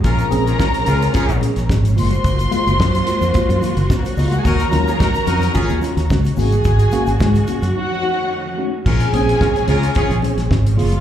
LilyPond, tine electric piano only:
\new Staff \with { instrumentName = "Tine electric piano" } { \time 4/4 \key bes \minor \tempo 4 = 109 <bes, f>16 r16 <c' des' aes'>16 <des' aes'>16 <des' aes'>16 <bes, f>16 <c' des' aes'>16 r16 <des' aes'>16 <bes, f>16 <des' aes'>16 r16 <des' aes'>16 <bes, f>16 <aes bes f'>16 r16 | ges16 r16 <aes bes f'>16 <bes f'>16 r16 ges16 <aes bes f'>16 r16 <bes f'>16 ges16 <bes f'>16 r16 <bes f'>16 ges16 <aes bes f'>16 r16 | ees16 r16 <ges des' f'>16 <des' f'>16 <des' f'>16 ees16 <ges des' f'>16 r16 <des' f'>16 ees16 <des' f'>16 r16 <des' f'>16 ees16 <bes des' ges'>16 r16 | <aes, ees>16 r16 <bes des' ges'>16 <des' ges'>16 <des' ges'>16 <aes, ees>16 <bes des' ges'>16 r16 <ees' ges'>16 f16 <ees' ges'>16 r16 <ees' ges'>16 f16 <a des' ees' ges'>16 r16 |
<bes, f>16 r16 <c' des' aes'>16 <des' aes'>16 r16 <bes, f>16 <c' des' aes'>16 r16 <des' aes'>16 <bes, f>16 <des' aes'>16 r16 <des' aes'>16 <bes, f>16 <bes f' aes'>16 r16 | }